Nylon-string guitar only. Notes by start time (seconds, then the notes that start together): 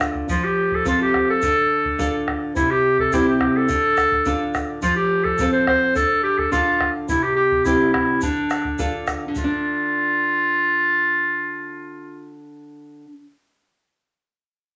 Already playing: D3 A3 D4 F4
0.29 F3
0.85 C4 F4 A4
1.43 D3
1.98 D4 F4 A4
2.56 C3
3.12 C4 E4 G4
3.69 D3
4.26 D4 F4 A4
4.83 F3
5.40 C4 F4 A4
5.96 D3
6.51 D4 F4 A4
7.10 C3
7.66 C4 E4 G4
8.23 D3
8.79 D4 F4 A4
9.28 D3
9.36 A3
9.44 D4